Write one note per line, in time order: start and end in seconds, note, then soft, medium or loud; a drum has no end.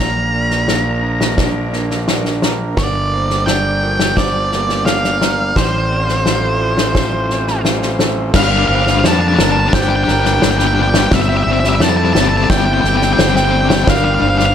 0.00 2.74 A#1 soft
0.00 1.73 A#2 soft
0.00 1.03 F3 soft
0.00 0.33 A#3 soft
0.00 0.68 D4 soft
0.00 2.43 A#4 soft
0.00 0.33 D5 soft
0.00 1.35 A#5 medium
0.34 1.73 A#3 soft
0.34 0.69 D5 medium
0.50 snare soft
0.68 1.38 D4 soft
0.68 snare medium
1.04 2.81 F3 soft
1.21 snare medium
1.38 2.07 D4 soft
1.38 kick medium
1.38 snare medium
1.73 2.78 A#3 soft
1.73 snare soft
1.90 snare soft
2.08 2.78 D4 soft
2.08 2.77 A#4 medium
2.08 snare medium
2.25 snare soft
2.42 2.78 A#4 soft
2.42 snare medium
2.77 5.52 G1 medium
2.77 4.52 G2 soft
2.77 3.13 A#4 medium
2.77 3.50 D5 medium
2.77 kick medium
2.77 snare medium
3.13 4.52 A#3 soft
3.13 3.48 C5 medium
3.30 snare soft
3.46 4.16 D4 soft
3.46 3.83 D5 medium
3.46 4.19 G5 medium
3.46 snare medium
3.83 6.60 F3 soft
3.83 4.18 A#4 medium
3.99 snare medium
4.17 4.86 D4 soft
4.17 4.52 C5 medium
4.17 4.83 D5 medium
4.17 kick medium
4.17 snare medium
4.52 5.57 A#3 soft
4.52 5.22 A#4 medium
4.52 snare soft
4.69 snare soft
4.86 5.57 D4 soft
4.86 5.58 F5 medium
4.86 snare medium
5.04 snare soft
5.21 5.57 A#4 medium
5.21 5.90 D5 soft
5.21 snare medium
5.56 8.31 A1 medium
5.56 7.31 A2 medium
5.56 7.61 C5 medium
5.56 kick medium
5.56 snare medium
5.91 7.29 C4 soft
5.91 6.26 D5 medium
6.08 snare soft
6.26 6.95 F4 soft
6.26 6.96 A4 medium
6.26 snare medium
6.61 8.35 F3 medium
6.78 snare medium
6.95 7.64 F4 medium
6.95 kick medium
6.95 snare medium
7.30 8.35 C4 soft
7.30 snare soft
7.47 snare soft
7.65 8.35 F4 medium
7.65 8.35 C5 medium
7.65 snare medium
7.82 snare soft
7.99 8.35 A4 medium
7.99 snare medium
8.34 8.67 G1 medium
8.34 10.81 G2 medium
8.34 8.41 G3 medium
8.34 8.43 D4 medium
8.34 8.69 A#4 medium
8.34 8.43 F5 medium
8.34 kick medium
8.34 snare medium
8.34 crash loud
8.42 8.49 G3 soft
8.42 8.50 D4 soft
8.42 8.51 F5 medium
8.50 8.57 G3 soft
8.50 8.57 D4 medium
8.50 8.57 F5 medium
8.58 8.65 G3 soft
8.58 8.65 D4 soft
8.58 8.66 F5 medium
8.65 9.02 G1 medium
8.65 8.73 G3 medium
8.65 10.42 A#3 medium
8.65 8.73 D4 soft
8.65 8.75 F5 medium
8.70 8.80 G3 soft
8.70 8.80 D4 soft
8.70 9.04 C5 medium
8.75 8.83 F5 medium
8.81 8.88 G3 soft
8.81 8.88 D4 medium
8.85 8.96 G3 soft
8.85 8.95 D4 medium
8.85 8.90 F5 medium
8.85 snare soft
8.91 8.99 F5 medium
8.96 9.03 G3 soft
8.96 9.04 D4 medium
8.96 9.07 F5 medium
9.03 9.37 F2 medium
9.03 9.11 G3 soft
9.03 9.72 D4 medium
9.03 9.11 D4 soft
9.03 9.39 D5 medium
9.03 9.12 A5 medium
9.03 snare medium
9.11 9.18 G3 medium
9.11 9.19 D4 medium
9.11 9.20 A5 medium
9.19 9.26 G3 soft
9.19 9.27 D4 soft
9.19 9.28 A5 medium
9.27 9.35 G3 medium
9.27 9.34 D4 medium
9.27 9.36 A5 medium
9.34 9.41 G3 soft
9.34 9.42 D4 medium
9.34 9.44 A5 medium
9.38 9.71 G1 medium
9.38 9.49 G3 medium
9.38 10.07 A#4 medium
9.38 9.73 A#4 medium
9.38 snare medium
9.43 9.50 D4 medium
9.43 9.51 A5 medium
9.49 9.57 G3 soft
9.49 9.57 D4 soft
9.49 9.59 A5 medium
9.57 9.66 G3 medium
9.57 9.65 D4 medium
9.57 9.68 A5 medium
9.66 9.73 G3 soft
9.66 9.73 D4 medium
9.66 9.74 A5 medium
9.73 10.06 G1 medium
9.73 9.80 G3 medium
9.73 11.12 D4 medium
9.73 9.81 D4 medium
9.73 10.08 C5 medium
9.73 9.82 G5 medium
9.73 kick loud
9.73 snare loud
9.80 9.88 G3 soft
9.80 9.89 D4 medium
9.80 9.89 G5 medium
9.88 9.94 G3 medium
9.88 9.96 D4 medium
9.88 9.95 G5 medium
9.95 10.02 G3 soft
9.95 10.04 D4 soft
9.95 10.03 G5 medium
10.04 10.10 G3 medium
10.04 10.11 D4 medium
10.04 10.11 G5 medium
10.04 snare soft
10.08 10.41 G1 medium
10.08 10.18 G3 soft
10.08 10.19 D4 medium
10.08 11.12 A#4 medium
10.08 10.77 A#4 medium
10.08 10.19 G5 medium
10.18 10.25 G3 medium
10.18 10.26 D4 medium
10.18 10.26 G5 medium
10.25 10.33 G3 soft
10.25 10.34 D4 soft
10.25 10.33 G5 medium
10.25 snare soft
10.34 10.42 G3 medium
10.34 10.42 D4 medium
10.34 10.41 G5 medium
10.42 11.11 G1 medium
10.42 10.50 G3 soft
10.42 11.12 A#3 medium
10.42 10.50 D4 soft
10.42 10.50 G5 medium
10.42 snare medium
10.50 10.57 G3 soft
10.50 10.57 D4 medium
10.50 10.58 G5 medium
10.57 10.64 G3 soft
10.57 10.65 D4 soft
10.57 10.67 G5 medium
10.57 snare soft
10.65 10.72 G3 medium
10.65 10.73 D4 medium
10.65 10.74 G5 medium
10.73 10.80 G3 soft
10.73 10.81 D4 soft
10.73 10.82 G5 medium
10.78 11.12 F3 medium
10.78 10.87 G3 soft
10.78 11.46 D5 medium
10.82 10.88 D4 medium
10.82 10.89 G5 medium
10.87 10.95 G3 soft
10.87 10.96 D4 soft
10.87 10.98 G5 medium
10.94 11.02 G3 soft
10.94 11.03 D4 soft
10.94 snare medium
10.99 11.06 G5 medium
11.03 11.10 G3 soft
11.03 11.11 D4 soft
11.07 11.15 G5 medium
11.11 11.44 G1 medium
11.11 11.20 G3 medium
11.11 12.85 G3 medium
11.11 11.21 C4 medium
11.11 11.21 E5 medium
11.11 kick medium
11.11 snare loud
11.21 11.27 G3 soft
11.21 11.29 C4 soft
11.21 11.29 E5 medium
11.28 11.35 G3 soft
11.28 11.36 C4 medium
11.28 11.37 E5 medium
11.35 11.43 G3 soft
11.35 11.43 C4 soft
11.35 11.43 E5 medium
11.43 11.79 G1 medium
11.43 11.49 G3 soft
11.43 11.51 C4 medium
11.43 13.18 C4 medium
11.43 11.52 E5 medium
11.47 11.57 G3 soft
11.47 11.59 C4 soft
11.47 11.81 D5 medium
11.53 11.60 E5 medium
11.59 11.66 G3 soft
11.59 11.67 C4 medium
11.59 11.68 E5 medium
11.64 11.73 G3 soft
11.64 11.75 C4 soft
11.64 snare soft
11.69 11.75 E5 medium
11.73 11.80 G3 medium
11.73 11.81 C4 medium
11.73 11.83 E5 medium
11.80 12.13 F2 medium
11.80 11.88 G3 soft
11.80 11.89 C4 medium
11.80 12.49 E4 medium
11.80 12.50 A4 medium
11.80 11.89 A5 medium
11.80 snare medium
11.89 11.95 G3 medium
11.89 11.97 C4 medium
11.89 11.97 A5 medium
11.96 12.04 G3 soft
11.96 12.05 C4 medium
11.96 12.04 A5 medium
12.04 12.10 G3 medium
12.04 12.13 C4 medium
12.04 12.13 A5 medium
12.11 12.18 G3 soft
12.11 12.20 C4 medium
12.11 12.20 A5 medium
12.15 12.48 G1 medium
12.15 12.84 A4 medium
12.15 snare medium
12.20 12.27 G3 medium
12.20 12.28 C4 medium
12.20 12.28 A5 medium
12.27 12.35 G3 soft
12.27 12.35 C4 medium
12.27 12.37 A5 medium
12.35 12.42 G3 medium
12.35 12.43 C4 medium
12.35 12.44 A5 medium
12.42 12.49 G3 soft
12.42 12.51 C4 medium
12.42 12.50 A5 medium
12.49 12.82 G1 medium
12.49 12.57 G3 medium
12.49 12.58 C4 medium
12.49 13.88 E4 medium
12.49 12.57 G5 medium
12.49 kick loud
12.49 snare loud
12.57 12.65 G3 soft
12.57 12.65 C4 medium
12.57 12.65 G5 medium
12.65 12.73 G3 medium
12.65 12.73 C4 medium
12.65 12.73 G5 medium
12.73 12.80 G3 soft
12.73 12.81 C4 medium
12.73 12.81 G5 medium
12.81 13.17 G1 medium
12.81 12.87 G3 medium
12.81 12.89 C4 medium
12.81 12.88 G5 medium
12.81 snare soft
12.85 12.94 G3 soft
12.85 12.96 C4 medium
12.85 13.88 A4 medium
12.85 12.97 G5 medium
12.95 13.03 G3 medium
12.95 13.04 C4 medium
12.95 13.03 G5 medium
13.01 13.12 G3 soft
13.01 13.11 C4 medium
13.01 13.12 G5 medium
13.01 snare soft
13.12 13.17 G3 medium
13.12 13.19 C4 medium
13.12 13.21 G5 medium
13.18 13.84 G1 medium
13.18 13.25 G3 soft
13.18 13.88 C4 medium
13.18 13.26 C4 medium
13.18 13.88 C5 medium
13.18 13.29 G5 medium
13.18 snare medium
13.26 13.32 G3 medium
13.26 13.34 C4 medium
13.26 13.36 G5 medium
13.33 13.40 G3 soft
13.33 13.43 C4 soft
13.33 13.44 G5 medium
13.33 snare soft
13.41 13.48 G3 medium
13.41 13.50 C4 medium
13.41 13.52 G5 medium
13.49 13.56 G3 soft
13.49 13.58 C4 soft
13.49 13.60 G5 medium
13.54 13.87 G3 medium
13.54 13.63 G3 medium
13.58 13.66 C4 medium
13.58 13.68 G5 medium
13.64 13.71 G3 soft
13.64 13.73 C4 soft
13.69 13.78 G3 medium
13.69 13.75 G5 medium
13.69 snare medium
13.73 13.80 C4 medium
13.73 13.84 G5 medium
13.79 13.86 G3 soft
13.79 13.88 C4 medium
13.84 14.20 G1 medium
13.84 14.55 G3 medium
13.84 14.22 A#4 medium
13.84 13.89 G5 medium
13.84 kick loud
13.84 snare loud
13.88 13.96 G3 medium
13.88 13.96 D4 medium
13.88 13.96 F5 medium
13.96 14.03 G3 soft
13.96 14.04 D4 soft
13.96 14.04 F5 medium
14.04 14.11 G3 soft
14.04 14.12 D4 medium
14.04 14.13 F5 medium
14.11 14.18 G3 soft
14.11 14.19 D4 medium
14.11 14.21 F5 medium
14.19 14.55 G1 medium
14.19 14.26 G3 medium
14.19 14.27 D4 medium
14.19 14.55 D4 medium
14.19 14.29 F5 medium
14.27 14.33 G3 soft
14.27 14.35 D4 medium
14.27 14.38 F5 medium
14.34 14.41 G3 soft
14.34 14.43 D4 medium
14.38 14.49 G3 soft
14.38 14.45 F5 medium
14.38 snare soft
14.43 14.50 D4 medium
14.43 14.54 F5 medium
14.50 14.55 G3 medium
14.50 14.55 D4 medium